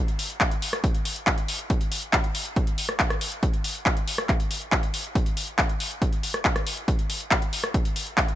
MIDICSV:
0, 0, Header, 1, 2, 480
1, 0, Start_track
1, 0, Tempo, 431655
1, 1892, Time_signature, 4, 2, 24, 8
1, 9287, End_track
2, 0, Start_track
2, 0, Title_t, "Drums"
2, 92, Note_on_c, 9, 42, 40
2, 203, Note_off_c, 9, 42, 0
2, 211, Note_on_c, 9, 46, 106
2, 323, Note_off_c, 9, 46, 0
2, 332, Note_on_c, 9, 42, 40
2, 443, Note_off_c, 9, 42, 0
2, 451, Note_on_c, 9, 36, 120
2, 452, Note_on_c, 9, 39, 123
2, 452, Note_on_c, 9, 42, 68
2, 562, Note_off_c, 9, 36, 0
2, 563, Note_off_c, 9, 39, 0
2, 563, Note_off_c, 9, 42, 0
2, 572, Note_on_c, 9, 42, 41
2, 683, Note_off_c, 9, 42, 0
2, 692, Note_on_c, 9, 46, 107
2, 803, Note_off_c, 9, 46, 0
2, 812, Note_on_c, 9, 37, 77
2, 812, Note_on_c, 9, 42, 41
2, 923, Note_off_c, 9, 37, 0
2, 923, Note_off_c, 9, 42, 0
2, 931, Note_on_c, 9, 36, 125
2, 932, Note_on_c, 9, 42, 68
2, 1042, Note_off_c, 9, 36, 0
2, 1043, Note_off_c, 9, 42, 0
2, 1051, Note_on_c, 9, 42, 42
2, 1163, Note_off_c, 9, 42, 0
2, 1171, Note_on_c, 9, 46, 101
2, 1282, Note_off_c, 9, 46, 0
2, 1291, Note_on_c, 9, 42, 41
2, 1403, Note_off_c, 9, 42, 0
2, 1411, Note_on_c, 9, 36, 122
2, 1411, Note_on_c, 9, 39, 125
2, 1411, Note_on_c, 9, 42, 67
2, 1522, Note_off_c, 9, 36, 0
2, 1523, Note_off_c, 9, 39, 0
2, 1523, Note_off_c, 9, 42, 0
2, 1531, Note_on_c, 9, 42, 38
2, 1642, Note_off_c, 9, 42, 0
2, 1651, Note_on_c, 9, 46, 114
2, 1762, Note_off_c, 9, 46, 0
2, 1771, Note_on_c, 9, 42, 39
2, 1882, Note_off_c, 9, 42, 0
2, 1890, Note_on_c, 9, 42, 65
2, 1891, Note_on_c, 9, 36, 126
2, 2002, Note_off_c, 9, 36, 0
2, 2002, Note_off_c, 9, 42, 0
2, 2010, Note_on_c, 9, 42, 37
2, 2122, Note_off_c, 9, 42, 0
2, 2131, Note_on_c, 9, 46, 113
2, 2242, Note_off_c, 9, 46, 0
2, 2251, Note_on_c, 9, 42, 38
2, 2362, Note_off_c, 9, 42, 0
2, 2370, Note_on_c, 9, 39, 120
2, 2370, Note_on_c, 9, 42, 64
2, 2371, Note_on_c, 9, 36, 123
2, 2482, Note_off_c, 9, 36, 0
2, 2482, Note_off_c, 9, 39, 0
2, 2482, Note_off_c, 9, 42, 0
2, 2491, Note_on_c, 9, 42, 39
2, 2602, Note_off_c, 9, 42, 0
2, 2610, Note_on_c, 9, 46, 106
2, 2721, Note_off_c, 9, 46, 0
2, 2731, Note_on_c, 9, 42, 37
2, 2842, Note_off_c, 9, 42, 0
2, 2851, Note_on_c, 9, 36, 124
2, 2851, Note_on_c, 9, 42, 63
2, 2962, Note_off_c, 9, 42, 0
2, 2963, Note_off_c, 9, 36, 0
2, 2971, Note_on_c, 9, 42, 41
2, 3082, Note_off_c, 9, 42, 0
2, 3091, Note_on_c, 9, 46, 106
2, 3202, Note_off_c, 9, 46, 0
2, 3211, Note_on_c, 9, 37, 67
2, 3322, Note_off_c, 9, 37, 0
2, 3331, Note_on_c, 9, 39, 121
2, 3331, Note_on_c, 9, 42, 64
2, 3332, Note_on_c, 9, 36, 125
2, 3443, Note_off_c, 9, 36, 0
2, 3443, Note_off_c, 9, 39, 0
2, 3443, Note_off_c, 9, 42, 0
2, 3451, Note_on_c, 9, 37, 84
2, 3451, Note_on_c, 9, 42, 38
2, 3563, Note_off_c, 9, 37, 0
2, 3563, Note_off_c, 9, 42, 0
2, 3571, Note_on_c, 9, 46, 109
2, 3682, Note_off_c, 9, 46, 0
2, 3691, Note_on_c, 9, 42, 38
2, 3802, Note_off_c, 9, 42, 0
2, 3811, Note_on_c, 9, 42, 62
2, 3812, Note_on_c, 9, 36, 127
2, 3923, Note_off_c, 9, 36, 0
2, 3923, Note_off_c, 9, 42, 0
2, 3931, Note_on_c, 9, 42, 37
2, 4043, Note_off_c, 9, 42, 0
2, 4051, Note_on_c, 9, 46, 109
2, 4163, Note_off_c, 9, 46, 0
2, 4171, Note_on_c, 9, 42, 37
2, 4283, Note_off_c, 9, 42, 0
2, 4291, Note_on_c, 9, 39, 114
2, 4291, Note_on_c, 9, 42, 61
2, 4292, Note_on_c, 9, 36, 123
2, 4403, Note_off_c, 9, 36, 0
2, 4403, Note_off_c, 9, 39, 0
2, 4403, Note_off_c, 9, 42, 0
2, 4412, Note_on_c, 9, 42, 38
2, 4523, Note_off_c, 9, 42, 0
2, 4532, Note_on_c, 9, 46, 107
2, 4643, Note_off_c, 9, 46, 0
2, 4652, Note_on_c, 9, 37, 83
2, 4763, Note_off_c, 9, 37, 0
2, 4771, Note_on_c, 9, 36, 124
2, 4772, Note_on_c, 9, 39, 58
2, 4772, Note_on_c, 9, 42, 62
2, 4883, Note_off_c, 9, 36, 0
2, 4883, Note_off_c, 9, 39, 0
2, 4883, Note_off_c, 9, 42, 0
2, 4892, Note_on_c, 9, 42, 38
2, 5003, Note_off_c, 9, 42, 0
2, 5012, Note_on_c, 9, 46, 106
2, 5123, Note_off_c, 9, 46, 0
2, 5132, Note_on_c, 9, 42, 37
2, 5243, Note_off_c, 9, 42, 0
2, 5251, Note_on_c, 9, 36, 123
2, 5251, Note_on_c, 9, 39, 113
2, 5251, Note_on_c, 9, 42, 61
2, 5362, Note_off_c, 9, 39, 0
2, 5362, Note_off_c, 9, 42, 0
2, 5363, Note_off_c, 9, 36, 0
2, 5371, Note_on_c, 9, 42, 38
2, 5483, Note_off_c, 9, 42, 0
2, 5491, Note_on_c, 9, 46, 107
2, 5602, Note_off_c, 9, 46, 0
2, 5611, Note_on_c, 9, 42, 37
2, 5723, Note_off_c, 9, 42, 0
2, 5731, Note_on_c, 9, 36, 120
2, 5731, Note_on_c, 9, 42, 65
2, 5842, Note_off_c, 9, 36, 0
2, 5842, Note_off_c, 9, 42, 0
2, 5851, Note_on_c, 9, 42, 37
2, 5962, Note_off_c, 9, 42, 0
2, 5971, Note_on_c, 9, 46, 104
2, 6082, Note_off_c, 9, 46, 0
2, 6091, Note_on_c, 9, 42, 37
2, 6202, Note_off_c, 9, 42, 0
2, 6211, Note_on_c, 9, 36, 122
2, 6211, Note_on_c, 9, 39, 112
2, 6211, Note_on_c, 9, 42, 62
2, 6322, Note_off_c, 9, 36, 0
2, 6322, Note_off_c, 9, 39, 0
2, 6322, Note_off_c, 9, 42, 0
2, 6332, Note_on_c, 9, 42, 39
2, 6443, Note_off_c, 9, 42, 0
2, 6451, Note_on_c, 9, 46, 100
2, 6563, Note_off_c, 9, 46, 0
2, 6572, Note_on_c, 9, 42, 37
2, 6683, Note_off_c, 9, 42, 0
2, 6691, Note_on_c, 9, 36, 118
2, 6692, Note_on_c, 9, 42, 61
2, 6802, Note_off_c, 9, 36, 0
2, 6803, Note_off_c, 9, 42, 0
2, 6812, Note_on_c, 9, 42, 39
2, 6923, Note_off_c, 9, 42, 0
2, 6932, Note_on_c, 9, 46, 99
2, 7043, Note_off_c, 9, 46, 0
2, 7052, Note_on_c, 9, 37, 67
2, 7163, Note_off_c, 9, 37, 0
2, 7171, Note_on_c, 9, 36, 123
2, 7172, Note_on_c, 9, 39, 116
2, 7172, Note_on_c, 9, 42, 62
2, 7282, Note_off_c, 9, 36, 0
2, 7283, Note_off_c, 9, 39, 0
2, 7283, Note_off_c, 9, 42, 0
2, 7292, Note_on_c, 9, 37, 80
2, 7292, Note_on_c, 9, 42, 38
2, 7403, Note_off_c, 9, 37, 0
2, 7403, Note_off_c, 9, 42, 0
2, 7412, Note_on_c, 9, 46, 106
2, 7523, Note_off_c, 9, 46, 0
2, 7532, Note_on_c, 9, 42, 37
2, 7643, Note_off_c, 9, 42, 0
2, 7651, Note_on_c, 9, 36, 117
2, 7652, Note_on_c, 9, 42, 67
2, 7762, Note_off_c, 9, 36, 0
2, 7763, Note_off_c, 9, 42, 0
2, 7772, Note_on_c, 9, 42, 38
2, 7883, Note_off_c, 9, 42, 0
2, 7891, Note_on_c, 9, 46, 99
2, 8003, Note_off_c, 9, 46, 0
2, 8012, Note_on_c, 9, 42, 39
2, 8123, Note_off_c, 9, 42, 0
2, 8131, Note_on_c, 9, 36, 110
2, 8132, Note_on_c, 9, 39, 114
2, 8132, Note_on_c, 9, 42, 62
2, 8242, Note_off_c, 9, 36, 0
2, 8243, Note_off_c, 9, 39, 0
2, 8243, Note_off_c, 9, 42, 0
2, 8252, Note_on_c, 9, 42, 40
2, 8363, Note_off_c, 9, 42, 0
2, 8372, Note_on_c, 9, 46, 98
2, 8483, Note_off_c, 9, 46, 0
2, 8491, Note_on_c, 9, 37, 79
2, 8491, Note_on_c, 9, 42, 39
2, 8603, Note_off_c, 9, 37, 0
2, 8603, Note_off_c, 9, 42, 0
2, 8611, Note_on_c, 9, 36, 110
2, 8611, Note_on_c, 9, 42, 68
2, 8722, Note_off_c, 9, 36, 0
2, 8723, Note_off_c, 9, 42, 0
2, 8731, Note_on_c, 9, 42, 41
2, 8843, Note_off_c, 9, 42, 0
2, 8851, Note_on_c, 9, 46, 100
2, 8962, Note_off_c, 9, 46, 0
2, 8971, Note_on_c, 9, 42, 39
2, 9082, Note_off_c, 9, 42, 0
2, 9091, Note_on_c, 9, 36, 112
2, 9092, Note_on_c, 9, 39, 111
2, 9092, Note_on_c, 9, 42, 66
2, 9202, Note_off_c, 9, 36, 0
2, 9203, Note_off_c, 9, 39, 0
2, 9203, Note_off_c, 9, 42, 0
2, 9212, Note_on_c, 9, 42, 38
2, 9287, Note_off_c, 9, 42, 0
2, 9287, End_track
0, 0, End_of_file